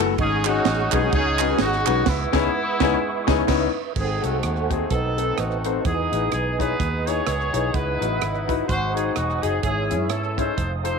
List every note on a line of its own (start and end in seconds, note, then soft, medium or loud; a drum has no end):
0.00 0.16 F#1 loud
0.00 0.11 A3 loud
0.00 0.18 A3 medium
0.00 0.11 B3 medium
0.00 0.11 E4 medium
0.00 0.11 F#4 loud
0.00 0.12 A4 loud
0.00 0.17 G#5 medium
0.00 0.17 B5 medium
0.00 0.16 E6 medium
0.18 0.59 G#1 loud
0.18 0.89 G#2 medium
0.18 0.46 C#4 medium
0.18 0.46 D#4 medium
0.18 2.05 G#4 medium
0.18 0.45 G#4 loud
0.18 2.05 F#5 medium
0.18 3.92 C#6 medium
0.18 2.05 D#6 medium
0.18 kick loud
0.18 ride medium
0.45 0.58 G#3 medium
0.45 0.59 C#4 medium
0.45 1.13 C#4 medium
0.45 0.59 D#4 medium
0.45 1.13 D#4 medium
0.45 0.59 F#4 medium
0.45 0.94 F#4 loud
0.45 0.59 G#4 medium
0.45 clap loud
0.45 ride medium
0.65 0.88 A1 medium
0.65 snare loud
0.65 ride medium
0.92 1.10 B1 medium
0.92 0.99 G#3 medium
0.92 0.99 C#4 medium
0.92 0.99 D#4 medium
0.92 0.99 F#4 medium
0.92 1.13 G#4 loud
0.92 1.00 B4 medium
0.92 kick loud
0.92 clap medium
0.92 ride medium
1.02 1.16 G#3 medium
1.02 1.17 C#4 medium
1.02 1.17 D#4 medium
1.02 1.17 F#4 medium
1.02 1.17 G#4 medium
1.13 1.53 C#2 loud
1.13 1.60 C#4 medium
1.13 1.60 D#4 loud
1.13 1.57 G#4 loud
1.13 kick loud
1.13 ride medium
1.39 1.46 G#3 medium
1.39 1.46 C#4 medium
1.39 1.47 D#4 medium
1.39 1.47 F#4 medium
1.39 1.47 B4 medium
1.39 clap medium
1.39 ride medium
1.50 1.64 G#3 medium
1.50 1.64 C#4 medium
1.50 1.64 D#4 medium
1.50 1.64 F#4 medium
1.50 1.64 B4 medium
1.59 1.83 G#1 loud
1.59 2.04 C#4 medium
1.59 2.05 D#4 medium
1.59 2.08 F#4 loud
1.59 snare loud
1.59 ride medium
1.73 snare soft
1.86 2.04 B1 loud
1.86 1.99 G#3 medium
1.86 1.99 C#4 medium
1.86 2.00 D#4 medium
1.86 2.00 F#4 medium
1.86 2.00 B4 medium
1.86 clap loud
1.86 ride medium
2.06 2.25 C#2 loud
2.06 3.72 G#3 medium
2.06 3.72 B3 medium
2.06 3.76 E4 loud
2.06 3.93 B4 medium
2.06 3.93 E5 medium
2.06 kick loud
2.06 snare loud
2.06 crash medium
2.32 2.48 C#2 loud
2.32 2.47 B3 loud
2.32 2.47 C#4 loud
2.32 2.47 D#4 loud
2.32 2.47 E4 loud
2.32 2.48 G#4 loud
2.32 kick loud
2.32 snare loud
2.80 2.95 C#2 loud
2.80 2.95 B3 loud
2.80 2.95 C#4 loud
2.80 2.95 D#4 loud
2.80 2.95 E4 loud
2.80 2.95 G#4 loud
2.80 kick loud
2.80 snare loud
3.27 3.42 C#2 loud
3.27 3.41 B3 medium
3.27 3.41 C#4 loud
3.27 3.41 D#4 loud
3.27 3.42 E4 medium
3.27 3.42 G#4 loud
3.27 kick loud
3.27 snare loud
3.47 3.67 C#2 medium
3.47 3.66 B3 loud
3.47 3.67 C#4 medium
3.47 3.66 D#4 loud
3.47 3.67 E4 loud
3.47 kick loud
3.47 snare loud
3.47 crash medium
3.96 4.19 G#1 loud
3.96 4.66 G#2 medium
3.96 5.83 A3 medium
3.96 4.90 C4 medium
3.96 4.23 C4 medium
3.96 4.88 D#4 medium
3.96 4.90 F#4 medium
3.96 4.22 G#4 medium
3.96 4.89 A4 medium
3.96 4.90 A4 medium
3.96 5.83 C5 medium
3.96 4.90 F#5 medium
3.96 4.90 G#5 soft
3.96 kick loud
3.96 crash medium
4.22 4.41 C2 medium
4.22 4.87 A3 medium
4.22 4.35 C4 medium
4.22 4.87 C4 medium
4.22 4.35 F#4 medium
4.22 4.71 F#4 medium
4.22 4.35 G#4 medium
4.22 4.36 A4 medium
4.22 closed hi-hat medium
4.43 4.84 D#2 medium
4.43 cross-stick medium
4.43 closed hi-hat medium
4.56 cross-stick soft
4.70 4.83 C4 medium
4.70 4.83 F#4 medium
4.70 4.83 G#4 medium
4.70 4.91 G#4 medium
4.70 4.83 C5 medium
4.70 kick medium
4.70 closed hi-hat medium
4.90 5.31 B1 loud
4.90 5.84 B2 medium
4.90 5.61 B2 medium
4.90 5.84 C4 medium
4.90 5.81 C4 medium
4.90 5.85 D#4 medium
4.90 5.38 D#4 medium
4.90 5.38 A4 loud
4.90 5.84 B4 medium
4.90 5.84 D#5 medium
4.90 5.84 A5 medium
4.90 kick medium
4.90 closed hi-hat medium
5.17 5.30 C4 medium
5.17 5.30 D#4 medium
5.17 5.30 A4 medium
5.17 5.31 B4 medium
5.17 closed hi-hat medium
5.38 5.78 A1 medium
5.38 5.83 A3 medium
5.38 5.82 D#4 medium
5.38 5.85 F#4 medium
5.38 cross-stick medium
5.38 closed hi-hat medium
5.51 cross-stick soft
5.64 5.78 C4 medium
5.64 5.78 D#4 medium
5.64 5.78 A4 medium
5.64 5.78 C5 medium
5.64 closed hi-hat medium
5.85 6.08 E2 medium
5.85 8.66 B2 medium
5.85 6.56 E3 medium
5.85 7.72 G#3 medium
5.85 8.66 B3 medium
5.85 6.76 B3 medium
5.85 6.59 D#4 medium
5.85 6.32 G#4 medium
5.85 8.67 B4 medium
5.85 9.60 D#5 medium
5.85 8.67 D#5 medium
5.85 7.73 G#5 medium
5.85 8.66 D#6 medium
5.85 kick loud
5.85 closed hi-hat medium
6.12 6.29 A1 medium
6.12 6.25 D#4 medium
6.12 6.25 E4 medium
6.12 6.25 G#4 medium
6.12 6.25 B4 medium
6.12 closed hi-hat medium
6.32 6.73 B1 medium
6.32 6.58 G#4 medium
6.32 cross-stick medium
6.32 closed hi-hat medium
6.59 6.72 D#4 medium
6.59 7.50 D#4 medium
6.59 6.72 E4 medium
6.59 6.72 G#4 medium
6.59 7.06 G#4 medium
6.59 7.04 B4 medium
6.59 6.73 C#5 medium
6.59 kick medium
6.59 closed hi-hat medium
6.80 7.20 D#2 medium
6.80 kick loud
6.80 closed hi-hat medium
7.06 7.20 D#4 medium
7.06 7.20 E4 soft
7.06 7.71 G#4 medium
7.06 7.20 G#4 medium
7.06 7.74 C#5 loud
7.06 7.20 C#5 medium
7.06 closed hi-hat medium
7.27 7.50 C#2 medium
7.27 cross-stick medium
7.27 closed hi-hat medium
7.41 cross-stick soft
7.53 7.71 B1 medium
7.53 7.67 D#4 medium
7.53 7.67 E4 medium
7.53 7.67 G#4 medium
7.53 7.67 C#5 medium
7.53 closed hi-hat medium
7.74 7.97 C#2 medium
7.74 8.44 C#3 medium
7.74 9.61 F#3 medium
7.74 8.65 D#4 medium
7.74 8.65 E4 medium
7.74 8.45 B4 medium
7.74 9.62 F#5 medium
7.74 kick loud
7.74 closed hi-hat medium
8.00 8.19 A1 medium
8.00 8.14 D#4 medium
8.00 8.14 E4 medium
8.00 8.14 F#4 medium
8.00 8.14 B4 medium
8.00 closed hi-hat medium
8.21 8.62 G#1 medium
8.21 cross-stick loud
8.21 closed hi-hat medium
8.35 cross-stick soft
8.48 8.61 D#4 medium
8.48 8.61 E4 medium
8.48 8.62 F#4 medium
8.48 8.62 B4 medium
8.48 kick medium
8.48 closed hi-hat medium
8.68 9.09 G#1 medium
8.68 9.39 G#2 medium
8.68 10.56 G#3 medium
8.68 9.63 C4 medium
8.68 9.59 D#4 medium
8.68 9.15 F#4 medium
8.68 8.93 C5 loud
8.68 9.64 C5 medium
8.68 10.57 G#5 medium
8.68 9.63 D#6 medium
8.68 kick loud
8.68 closed hi-hat medium
8.94 9.08 D#4 medium
8.94 9.08 F#4 medium
8.94 9.09 G#4 medium
8.94 9.15 G#4 medium
8.94 9.09 C5 medium
8.94 closed hi-hat medium
9.16 9.39 E1 medium
9.16 9.43 F#4 medium
9.16 cross-stick medium
9.16 closed hi-hat medium
9.30 cross-stick soft
9.42 9.61 F#1 medium
9.42 9.56 D#4 medium
9.42 9.56 F#4 medium
9.42 9.56 G#4 medium
9.42 9.63 G#4 medium
9.42 9.56 D#5 medium
9.42 closed hi-hat medium
9.63 9.93 G#1 medium
9.63 10.33 G#2 medium
9.63 10.57 E3 medium
9.63 10.57 C#4 medium
9.63 10.55 C#4 medium
9.63 10.57 E4 medium
9.63 10.54 E4 medium
9.63 10.08 G#4 medium
9.63 10.57 C#5 medium
9.63 10.57 E5 medium
9.63 10.57 E6 medium
9.63 kick medium
9.63 closed hi-hat medium
9.90 10.10 F#2 medium
9.90 10.03 C#4 medium
9.90 10.03 E4 medium
9.90 10.04 G#4 medium
9.90 10.04 C#5 medium
9.90 closed hi-hat medium
10.10 10.51 G#2 medium
10.10 10.37 A4 medium
10.10 cross-stick medium
10.10 closed hi-hat medium
10.23 cross-stick soft
10.37 10.50 C#4 medium
10.37 10.70 D#4 medium
10.37 10.51 E4 medium
10.37 10.51 G#4 medium
10.37 10.70 A4 medium
10.37 10.70 C5 loud
10.37 10.51 C#5 medium
10.37 kick medium
10.37 closed hi-hat medium
10.57 10.99 F1 medium
10.57 10.99 F3 medium
10.57 10.99 A3 medium
10.57 10.99 C4 medium
10.57 10.99 D#4 medium
10.57 10.99 C5 medium
10.57 10.99 F5 medium
10.57 10.99 A5 medium
10.57 10.99 D#6 medium
10.57 kick medium
10.57 closed hi-hat medium
10.84 10.97 D#4 medium
10.84 10.99 D#4 medium
10.84 10.97 F4 medium
10.84 10.97 A4 medium
10.84 10.99 A4 medium
10.84 10.99 C5 medium
10.84 10.97 C5 medium
10.84 closed hi-hat medium